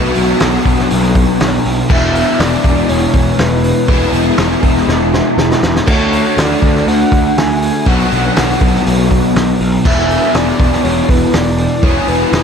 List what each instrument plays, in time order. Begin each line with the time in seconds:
Already playing: overdriven electric guitar B2 F#3 B3 D4 F#4, soft synth lead B4
0.15 picked electric bass B1, open hi-hat
0.40 picked electric bass B1, snare, open hi-hat
0.54 snare
0.65 picked electric bass B1, kick, open hi-hat
0.79 snare
0.90 picked electric bass B1, open hi-hat
1.15 kick, open hi-hat
1.40 picked electric bass B1, snare, open hi-hat
1.65 picked electric bass B1, open hi-hat
1.89 picked electric bass E1, overdriven electric guitar E2 B2 E3 G#3 D4 E4, soft synth lead E5, kick, crash
2.15 open hi-hat
2.40 picked electric bass E1, soft synth lead D5, snare, open hi-hat
2.53 snare
2.64 picked electric bass E1, kick, open hi-hat
2.89 picked electric bass E1, soft synth lead C#5, open hi-hat
3.14 picked electric bass E1, kick, open hi-hat
3.38 picked electric bass E1, soft synth lead B4, snare, open hi-hat
3.64 soft synth lead B4, open hi-hat
3.87 picked electric bass E1, overdriven electric guitar E2 B2 E3 G#3 D4 E4, kick, open hi-hat
4.13 picked electric bass E1, open hi-hat
4.37 picked electric bass E1, snare, open hi-hat
4.51 snare
4.63 picked electric bass E1, kick, open hi-hat
4.76 snare
4.88 picked electric bass E1, snare
5.14 snare
5.38 picked electric bass E1, snare
5.51 snare
5.63 picked electric bass E1, snare
5.76 snare
5.87 picked electric bass D2, overdriven electric guitar D3 A3 D4 F#4, soft synth lead C#5, kick, crash
6.13 open hi-hat
6.37 picked electric bass D2, soft synth lead D5, snare, open hi-hat
6.51 snare
6.62 picked electric bass D2, kick, open hi-hat
6.76 snare
6.87 picked electric bass D2, soft synth lead F#5, open hi-hat
7.12 picked electric bass D2, kick, open hi-hat
7.37 picked electric bass D2, soft synth lead G#5, snare, open hi-hat
7.62 open hi-hat
7.86 picked electric bass B1, overdriven electric guitar B2 F#3 B3 D4 F#4, soft synth lead F#5, kick, open hi-hat
8.12 picked electric bass B1, open hi-hat
8.36 picked electric bass B1, snare, open hi-hat
8.49 snare
8.61 picked electric bass B1, kick, open hi-hat
8.75 snare
8.86 picked electric bass B1, open hi-hat
9.11 kick, open hi-hat
9.36 picked electric bass B1, snare, open hi-hat
9.60 picked electric bass B1, open hi-hat
9.85 picked electric bass E1, overdriven electric guitar E2 B2 E3 B3 D4 G#4, soft synth lead E5, kick, crash
10.11 open hi-hat
10.34 picked electric bass E1, soft synth lead D5, snare, open hi-hat
10.48 snare
10.59 picked electric bass E1, kick, open hi-hat
10.72 snare
10.83 picked electric bass E1, soft synth lead C#5, open hi-hat
11.09 picked electric bass E1, soft synth lead B4, kick, open hi-hat
11.33 picked electric bass E1, soft synth lead D5, snare, open hi-hat
11.58 soft synth lead D5, open hi-hat
11.83 picked electric bass E1, overdriven electric guitar E2 B2 E3 B3 D4 G#4, soft synth lead C#5, kick, open hi-hat
12.08 picked electric bass E1, soft synth lead B4, open hi-hat
12.32 picked electric bass E1, snare, open hi-hat